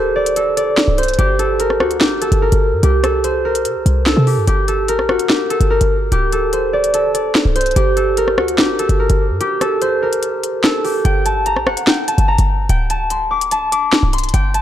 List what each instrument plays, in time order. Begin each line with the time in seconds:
Already playing: 808-style bass D1, harp G4 A4 C5
0.16 harp D5
0.26 closed hi-hat
0.36 harp A4, closed hi-hat
0.57 harp D5, closed hi-hat
0.78 snare
0.88 808-style bass C1
0.98 harp C5, closed hi-hat
1.03 closed hi-hat
1.08 closed hi-hat
1.14 closed hi-hat
1.18 808-style bass G1, harp G4, closed hi-hat
1.39 harp A4, closed hi-hat
1.60 harp A#4, closed hi-hat
1.70 cross-stick
1.80 808-style bass D2, harp F#4, cross-stick
1.91 closed hi-hat
2.01 harp G4, snare
2.06 808-style bass G1
2.21 harp A4, closed hi-hat
2.32 808-style bass G1, closed hi-hat
2.42 harp A#4
2.52 808-style bass G1, closed hi-hat
2.73 808-style bass G2
2.83 808-style bass C2, harp G4, closed hi-hat
3.04 harp A4, cross-stick, closed hi-hat
3.24 harp C5, closed hi-hat
3.45 harp A#4
3.55 closed hi-hat
3.65 808-style bass C3, closed hi-hat
3.76 808-style bass C2
3.86 808-style bass C2, closed hi-hat
4.06 harp A4, snare
4.17 808-style bass C3
4.27 harp G4, open hi-hat
4.37 808-style bass G2
4.47 808-style bass G1, harp G4, closed hi-hat
4.68 harp A4, closed hi-hat
4.88 harp A#4, closed hi-hat
4.99 808-style bass A#1, cross-stick
5.09 808-style bass G1, harp F#4, cross-stick
5.19 closed hi-hat
5.30 harp G4, snare
5.50 harp A4, closed hi-hat
5.60 808-style bass G1, closed hi-hat
5.70 harp A#4
5.81 808-style bass G1, closed hi-hat
6.12 808-style bass D1, harp G4, closed hi-hat
6.32 harp A4, closed hi-hat
6.53 harp C5, closed hi-hat
6.73 harp D5
6.84 closed hi-hat
6.94 harp A4, closed hi-hat
7.14 harp D5, closed hi-hat
7.35 snare
7.45 808-style bass C1
7.56 harp C5, closed hi-hat
7.61 closed hi-hat
7.66 closed hi-hat
7.71 closed hi-hat
7.76 808-style bass G1, harp G4, closed hi-hat
7.97 harp A4, closed hi-hat
8.17 harp A#4, closed hi-hat
8.28 cross-stick
8.38 808-style bass D2, harp F#4, cross-stick
8.48 closed hi-hat
8.58 harp G4, snare
8.64 808-style bass G1
8.79 harp A4, closed hi-hat
8.89 808-style bass G1, closed hi-hat
9.00 harp A#4
9.10 808-style bass G1, closed hi-hat
9.30 808-style bass G2
9.40 harp G4, closed hi-hat
9.61 harp A4, cross-stick, closed hi-hat
9.82 harp C5, closed hi-hat
10.02 harp A#4
10.13 closed hi-hat
10.23 closed hi-hat
10.44 closed hi-hat
10.64 harp A4, snare
10.84 harp G4, open hi-hat
11.05 808-style bass G1, harp G5, closed hi-hat
11.26 harp A5, closed hi-hat
11.46 harp A#5, closed hi-hat
11.56 808-style bass A#1, cross-stick
11.67 808-style bass G1, harp F#5, cross-stick
11.77 closed hi-hat
11.87 harp G5, snare
12.08 harp A5, closed hi-hat
12.18 808-style bass G1, closed hi-hat
12.28 harp A#5
12.38 808-style bass G1, closed hi-hat
12.69 808-style bass D1, harp G5, closed hi-hat
12.90 harp A5, closed hi-hat
13.10 harp C6, closed hi-hat
13.31 harp D6
13.41 closed hi-hat
13.51 harp A5, closed hi-hat
13.72 harp D6, closed hi-hat
13.93 snare
14.03 808-style bass C1
14.13 harp C6, closed hi-hat
14.18 closed hi-hat
14.24 closed hi-hat
14.29 closed hi-hat
14.34 808-style bass G1, harp G5, closed hi-hat
14.54 harp A5, closed hi-hat